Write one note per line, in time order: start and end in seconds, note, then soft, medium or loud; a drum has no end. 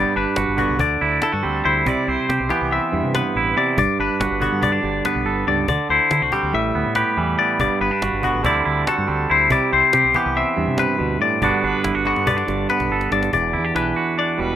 0.00 0.77 G2 medium
0.00 0.57 G3 medium
0.00 0.16 B3 medium
0.00 0.37 G4 medium
0.00 0.16 D5 medium
0.15 0.25 G1 medium
0.15 0.77 D4 medium
0.15 0.59 B4 medium
0.15 cajon slap soft
0.36 0.46 G1 medium
0.36 0.77 F#4 medium
0.36 cajon slap loud
0.48 0.65 G1 medium
0.57 0.78 D3 medium
0.57 0.77 B3 medium
0.57 0.80 F#4 medium
0.57 cajon bass medium
0.69 0.78 C2 medium
0.79 0.97 D2 medium
0.79 1.86 D3 medium
0.79 1.23 D5 medium
0.79 cajon bass loud
1.01 1.18 D2 medium
1.01 1.21 E4 medium
1.01 cajon slap soft
1.22 1.32 E4 medium
1.22 1.65 A4 medium
1.22 cajon slap loud
1.32 1.42 G2 medium
1.32 1.64 F#4 soft
1.43 1.61 D2 medium
1.43 2.50 G3 medium
1.43 1.84 C4 medium
1.43 cajon slap soft
1.64 1.82 D2 medium
1.64 2.29 E4 medium
1.64 1.87 C5 medium
1.64 cajon slap soft
1.86 1.95 C2 medium
1.86 2.50 C3 medium
1.86 2.08 D5 medium
1.86 cajon bass loud
2.08 2.16 C2 medium
2.08 2.71 C4 medium
2.08 2.50 C5 medium
2.08 cajon slap soft
2.29 2.38 C3 medium
2.29 3.36 G4 medium
2.29 cajon slap loud
2.40 2.48 B1 medium
2.50 3.75 E3 medium
2.50 3.13 B3 medium
2.50 2.72 G4 medium
2.50 cajon bass medium
2.50 cajon slap soft
2.62 2.78 C2 medium
2.72 3.75 C4 medium
2.72 3.14 E5 medium
2.72 cajon slap soft
2.92 3.02 E2 medium
2.92 3.56 G2 medium
2.92 cajon slap soft
3.04 3.21 C3 medium
3.15 3.76 B3 medium
3.15 3.57 B4 medium
3.15 cajon slap loud
3.36 3.52 A1 medium
3.36 3.78 E4 medium
3.36 cajon slap soft
3.57 3.75 C3 medium
3.57 3.77 D5 medium
3.57 cajon slap soft
3.77 3.86 G1 medium
3.77 4.82 G2 medium
3.77 3.99 D5 medium
3.77 cajon bass loud
3.99 4.08 G1 medium
3.99 4.61 D4 medium
3.99 4.42 B4 medium
3.99 cajon slap soft
4.20 4.29 G1 medium
4.20 5.25 F#4 medium
4.20 cajon slap loud
4.31 4.48 G1 medium
4.40 5.67 D3 medium
4.40 4.60 B3 medium
4.40 4.63 F#4 medium
4.40 cajon bass medium
4.52 4.78 G2 medium
4.61 4.72 B3 medium
4.61 5.05 D5 medium
4.61 cajon bass loud
4.61 cajon slap soft
4.72 5.68 D4 soft
4.83 5.01 G1 medium
4.83 5.46 G2 medium
4.83 cajon slap soft
5.05 5.66 B3 medium
5.05 5.47 B4 medium
5.05 cajon slap medium
5.16 5.24 B1 medium
5.26 5.43 G1 medium
5.26 5.91 A4 medium
5.26 cajon slap soft
5.47 5.64 C#2 medium
5.47 5.66 G2 medium
5.47 5.67 D5 medium
5.47 cajon slap soft
5.68 5.77 D2 medium
5.68 6.54 D3 medium
5.68 5.90 D5 medium
5.68 cajon bass medium
5.89 5.98 D2 medium
5.89 6.10 E4 medium
5.89 6.33 C5 medium
5.89 cajon slap soft
6.11 6.20 D3 medium
6.11 6.22 E4 soft
6.11 cajon slap loud
6.22 6.30 C2 medium
6.22 6.54 F#4 soft
6.32 7.17 G3 medium
6.32 6.52 C4 medium
6.32 6.54 G4 medium
6.32 cajon bass medium
6.43 6.52 D2 medium
6.53 6.71 A1 medium
6.53 7.60 A2 medium
6.53 6.95 E5 medium
6.53 cajon slap soft
6.74 6.84 D2 medium
6.74 7.38 B3 medium
6.74 cajon slap soft
6.86 7.03 A2 medium
6.95 8.02 G4 medium
6.95 7.38 B4 medium
6.95 cajon slap medium
7.17 7.34 E2 medium
7.17 7.57 E3 medium
7.17 8.23 G3 medium
7.17 cajon slap soft
7.38 7.79 B3 medium
7.38 7.59 D5 medium
7.38 cajon slap soft
7.60 7.68 G1 medium
7.60 8.42 G2 medium
7.60 7.81 D5 medium
7.60 cajon bass loud
7.81 7.89 G1 medium
7.81 7.91 B3 medium
7.81 8.24 B4 medium
7.81 cajon slap soft
7.91 8.44 D4 soft
8.02 8.11 G1 medium
8.02 8.42 F#4 medium
8.02 cajon slap loud
8.13 8.30 G1 medium
8.22 8.42 D3 medium
8.22 8.42 B3 medium
8.22 8.45 F#4 medium
8.22 cajon bass medium
8.22 cajon slap soft
8.34 8.43 A1 medium
8.43 8.61 D2 loud
8.43 9.50 D3 medium
8.43 9.07 G3 medium
8.43 9.07 C4 soft
8.43 8.64 E4 medium
8.43 8.88 D5 medium
8.43 cajon bass loud
8.65 8.83 D2 medium
8.65 8.87 E4 medium
8.65 cajon slap soft
8.87 9.29 F#4 medium
8.87 9.31 A4 medium
8.87 cajon slap loud
8.98 9.07 G2 medium
9.07 9.26 D2 medium
9.07 10.14 G3 medium
9.07 9.48 C4 medium
9.07 cajon slap soft
9.29 9.47 D2 medium
9.29 9.93 E4 medium
9.29 9.52 C5 medium
9.29 cajon slap soft
9.50 9.59 C2 medium
9.50 10.14 C3 medium
9.50 9.73 D5 medium
9.50 cajon bass loud
9.71 9.81 C2 medium
9.71 10.36 C4 medium
9.71 10.15 C5 medium
9.71 cajon slap soft
9.93 10.02 C3 medium
9.93 11.44 G4 medium
9.93 cajon slap loud
10.05 10.13 B1 medium
10.14 11.40 E3 medium
10.14 11.43 B3 medium
10.14 10.37 G4 medium
10.14 cajon bass medium
10.26 10.43 C2 medium
10.35 11.40 C4 medium
10.35 10.79 E5 medium
10.35 cajon slap soft
10.57 10.66 E2 medium
10.57 11.39 G2 medium
10.57 cajon slap soft
10.68 10.85 C3 medium
10.77 10.98 C3 medium
10.77 11.21 B4 medium
10.77 cajon slap loud
10.99 11.17 D2 medium
10.99 11.20 B2 medium
10.99 cajon slap soft
11.20 11.42 A2 medium
11.20 11.42 D5 medium
11.20 cajon slap soft
11.42 11.50 G1 medium
11.42 12.47 G2 medium
11.42 12.04 D3 medium
11.42 12.05 B3 medium
11.42 11.63 D4 medium
11.42 11.84 F#4 medium
11.42 11.64 D5 medium
11.42 cajon bass medium
11.63 11.72 G1 medium
11.63 12.26 D4 medium
11.63 12.06 B4 medium
11.63 cajon slap soft
11.84 11.93 G1 medium
11.84 11.95 E4 medium
11.84 cajon slap loud
11.95 12.12 G1 medium
11.95 12.91 F#4 soft
12.05 13.74 D3 medium
12.05 12.25 B3 medium
12.05 12.28 F#4 medium
12.05 cajon slap medium
12.16 12.42 G2 medium
12.16 cajon slap soft
12.26 12.37 B3 medium
12.26 12.69 D5 medium
12.26 cajon bass loud
12.37 13.33 D4 soft
12.37 cajon slap medium
12.48 12.65 G1 medium
12.48 13.11 G2 medium
12.48 cajon slap medium
12.70 13.31 B3 medium
12.70 13.12 B4 medium
12.70 cajon slap medium
12.80 12.89 B1 medium
12.80 cajon slap medium
12.90 13.07 G1 medium
12.90 13.31 A4 medium
12.90 cajon slap soft
13.01 cajon slap medium
13.11 13.29 G1 medium
13.11 13.31 G2 medium
13.11 13.32 D5 medium
13.11 cajon slap medium
13.23 cajon slap medium
13.33 13.55 E1 medium
13.33 14.56 E2 medium
13.33 13.76 D5 medium
13.33 cajon bass medium
13.53 13.71 E2 medium
13.53 13.64 E4 soft
13.53 cajon slap soft
13.64 13.96 G4 soft
13.75 13.92 B1 medium
13.75 14.56 E3 medium
13.75 14.17 D4 medium
13.75 14.18 B4 medium
13.75 cajon slap medium
13.96 14.56 F#4 soft
13.96 cajon slap soft
14.18 14.56 D4 soft
14.18 14.40 D5 medium
14.18 cajon slap soft
14.38 14.56 E1 medium
14.38 14.56 B2 medium
14.38 14.56 G3 medium
14.38 14.56 B4 medium
14.38 cajon slap soft